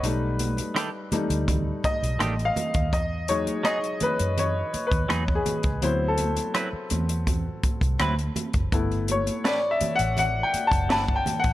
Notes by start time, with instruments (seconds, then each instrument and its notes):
Already playing: grand piano B4
0.03 fingered electric bass B1, grand piano G3 A3 D#4, closed hi-hat, muted conga
0.39 closed hi-hat, muted conga, high conga
0.57 closed hi-hat, high conga
0.75 clean electric guitar D#3 A3 D4 G4, cross-stick, closed hi-hat, muted conga
1.12 grand piano G3 A3 D#4, muted fingered electric bass stroke, cross-stick, closed hi-hat, muted conga, high conga, low conga
1.30 fingered electric bass D2, closed hi-hat
1.48 kick, closed hi-hat, low conga
1.84 grand piano D#5, muted fingered electric bass stroke, kick, closed hi-hat, muted conga, high conga
2.03 fingered electric bass B1, closed hi-hat
2.19 fingered electric bass A1, clean electric guitar D#3 A3 D4 G4, cross-stick, closed hi-hat, high conga
2.39 closed hi-hat
2.45 grand piano F5
2.56 closed hi-hat, high conga, low conga
2.74 fingered electric bass D#2, kick, closed hi-hat
2.93 fingered electric bass E2, grand piano D#5, kick, closed hi-hat, muted conga
3.28 grand piano F#3 G#3 D#4 C#5, closed hi-hat, muted conga, high conga
3.47 closed hi-hat, high conga
3.63 clean electric guitar F#3 B3 D#4 G#4, grand piano D#5, cross-stick, closed hi-hat, muted conga
3.84 closed hi-hat
4.00 grand piano B4, muted fingered electric bass stroke, closed hi-hat, high conga, low conga
4.19 fingered electric bass F#2, closed hi-hat
4.37 grand piano C#5, closed hi-hat, low conga
4.73 muted fingered electric bass stroke, closed hi-hat, muted conga, high conga
4.87 grand piano B4
4.92 fingered electric bass D#2, kick, closed hi-hat
5.09 fingered electric bass E2, clean electric guitar F#3 B3 D#4 G#4, cross-stick, closed hi-hat, muted conga, high conga
5.28 kick
5.35 grand piano G#4
5.46 closed hi-hat, high conga, low conga
5.63 fingered electric bass C#2, kick, closed hi-hat
5.82 fingered electric bass D2, grand piano F#3 B3 C4 E4 C5, closed hi-hat, muted conga
6.08 grand piano A4
6.18 closed hi-hat, muted conga, high conga
6.36 closed hi-hat, high conga
6.54 clean electric guitar F#3 C4 E4 B4, cross-stick, closed hi-hat, muted conga
6.73 muted fingered electric bass stroke
6.90 fingered electric bass E2, cross-stick, closed hi-hat, high conga, low conga
7.09 closed hi-hat
7.27 kick, closed hi-hat, muted conga, low conga
7.63 muted fingered electric bass stroke, kick, closed hi-hat, muted conga, high conga
7.81 fingered electric bass C2, kick, closed hi-hat
8.00 fingered electric bass D2, clean electric guitar F#3 C4 E4 B4, cross-stick, closed hi-hat, high conga
8.19 closed hi-hat
8.36 closed hi-hat, muted conga, high conga, low conga
8.53 fingered electric bass F#1, kick, closed hi-hat
8.72 fingered electric bass G1, grand piano A3 B3 E4, kick, closed hi-hat
8.92 closed hi-hat
9.08 grand piano C#5, closed hi-hat, muted conga, high conga
9.27 closed hi-hat, high conga
9.44 clean electric guitar A3 D4 E4 B4, grand piano D5, snare, closed hi-hat, muted conga
9.71 grand piano E5
9.81 muted fingered electric bass stroke, closed hi-hat, high conga, low conga
9.96 fingered electric bass A1, grand piano F#5, closed hi-hat
10.17 grand piano F#5, closed hi-hat, muted conga, low conga
10.43 grand piano G5
10.54 muted fingered electric bass stroke, closed hi-hat, muted conga, high conga
10.67 grand piano A5
10.72 fingered electric bass F#1, kick, closed hi-hat
10.89 fingered electric bass G1, clean electric guitar A3 D4 E4 B4, grand piano A5, snare, closed hi-hat, muted conga, high conga
11.08 kick
11.16 grand piano G5
11.26 closed hi-hat, muted conga, high conga, low conga
11.40 grand piano F#5
11.44 fingered electric bass A1, kick, closed hi-hat